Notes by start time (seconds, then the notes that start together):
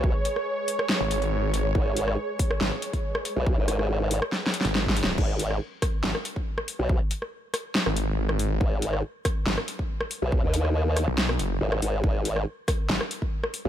Already playing: B1 G#3 G#4 B4 C#5
0.04 kick
0.25 closed hi-hat
0.36 cross-stick
0.68 open hi-hat
0.79 cross-stick
0.89 snare
1.01 G#1
1.11 closed hi-hat
1.22 closed hi-hat
1.54 closed hi-hat
1.75 G#1, kick
1.97 closed hi-hat
2.08 cross-stick
2.39 kick, open hi-hat
2.51 cross-stick
2.61 G#1, snare
2.82 closed hi-hat
2.93 kick, closed hi-hat
3.15 cross-stick
3.25 closed hi-hat
3.36 B1
3.47 kick
3.58 G#1
3.68 cross-stick, closed hi-hat
3.79 cross-stick
4.11 open hi-hat
4.22 cross-stick
4.32 snare
4.47 snare
4.54 closed hi-hat
4.61 G#1, snare
4.65 closed hi-hat
4.75 snare
4.86 kick, snare
4.96 closed hi-hat
5.04 snare
5.18 G#1, kick, crash
5.39 closed hi-hat
5.51 cross-stick
5.82 kick, cross-stick, closed hi-hat
6.04 G#1, snare
6.15 cross-stick
6.25 closed hi-hat
6.36 kick
6.58 cross-stick
6.68 open hi-hat
6.79 B1
6.89 kick
7.11 closed hi-hat
7.22 cross-stick
7.54 cross-stick, closed hi-hat
7.75 snare
7.86 G#1, cross-stick
7.96 closed hi-hat
8.29 cross-stick
8.39 open hi-hat
8.61 G#1, kick
8.82 closed hi-hat
8.93 cross-stick
9.25 kick, cross-stick, closed hi-hat
9.46 G#1, snare
9.58 cross-stick
9.68 closed hi-hat
9.79 kick
10.01 cross-stick
10.11 open hi-hat
10.22 B1
10.32 kick
10.43 D#2
10.54 closed hi-hat
10.65 cross-stick
10.97 cross-stick, closed hi-hat
11.08 B1
11.18 snare
11.29 cross-stick
11.39 F#1, closed hi-hat
11.61 G#1
11.72 cross-stick
11.82 G#1, open hi-hat
12.04 G#1, kick
12.25 closed hi-hat
12.36 cross-stick
12.68 kick, cross-stick, closed hi-hat
12.89 G#1, snare
13.01 cross-stick
13.11 closed hi-hat
13.22 kick
13.44 cross-stick
13.54 open hi-hat
13.65 B1